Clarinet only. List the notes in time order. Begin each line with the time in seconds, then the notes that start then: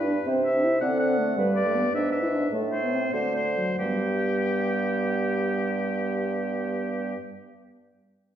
Already playing: B4
0.27 C5
0.82 A4
1.38 B4
1.95 B4
2.52 A4
3.14 F#4
3.79 B3